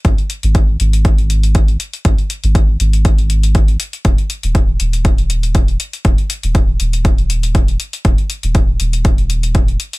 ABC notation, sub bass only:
X:1
M:4/4
L:1/16
Q:"Swing 16ths" 1/4=120
K:Abdor
V:1 name="Sub bass" clef=bass
A,,, z2 A,,,3 A,,,8 z2 | A,,, z2 A,,,3 A,,,8 z2 | E,,, z2 E,,,3 E,,,8 z2 | E,,, z2 E,,,3 E,,,8 z2 |
E,,, z2 E,,,3 E,,,8 z2 |]